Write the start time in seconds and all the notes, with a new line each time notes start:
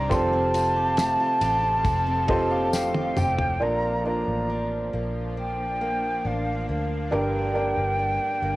Already playing: G2 G3 C4 D4 D#4 G4 D5 A#5
0.09 F1 C3 F3 C4 F4 G4 A4 C5 A5, kick, ride, tambourine
0.33 C4
0.54 F4, ride, tambourine
0.76 G4
0.97 A3, snare, ride, tambourine
1.20 F4
1.41 A1 G4, ride, tambourine
1.63 F4
1.85 F1 F3, kick, ride, tambourine
2.07 C4
2.28 C4 F4 G4 A4 C5 D#5, kick, ride
2.51 G4 F5
2.73 A3 F5 G5, snare, tambourine
2.95 F4, high tom
3.17 F1 G4 G5, mid tom, tambourine
3.39 F4, floor tom
3.60 A#1 F3 A#3 D4 F4 A#4 D5 A#5
4.04 A#3 D4 F4 A#4 D5 A#5
4.28 A1
4.50 D4
4.93 A#1 A#3
5.37 D4 G5
5.81 A#3
6.25 A1 D4 F5
6.69 D2 A#3 F5
7.11 G1 G2 D3 G3 D4 G4 A#4 D5 G5
7.54 A#3 D4 G4 A#4 D5
7.77 G1
7.99 D4
8.42 G1 A#3